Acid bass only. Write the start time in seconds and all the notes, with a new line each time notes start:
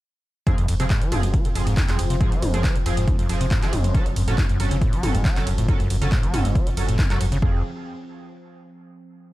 0.47 F2
0.58 F2
0.68 F2
0.80 C3
0.90 G#2
1.02 F3
1.12 F2
1.23 F#2
1.34 F3
1.45 F2
1.55 F2
1.67 G#2
1.88 F2
1.99 F2
2.10 C3
2.21 G#2
2.32 F3
2.42 F2
2.54 F#2
2.64 F3
2.75 F2
2.86 F2
2.97 G#2
3.19 F2
3.29 F2
3.41 C3
3.51 G#2
3.62 F3
3.73 F2
3.84 F#2
3.95 F#3
4.06 F#2
4.16 F#2
4.28 A2
4.38 F#2
4.49 F#2
4.60 F#2
4.71 C#3
4.82 A2
4.93 F#3
5.03 F#2
5.15 G#2
5.25 F#3
5.36 F#2
5.47 F#2
5.58 A2
5.68 F#2
5.80 F#2
5.90 F#2
6.02 C#3
6.12 A2
6.23 F#3
6.34 F#2
6.45 G#2
6.55 F#3
6.67 F#2
6.77 F#2
6.88 A2
7.10 F#2
7.21 F#2
7.32 C#3
7.42 F2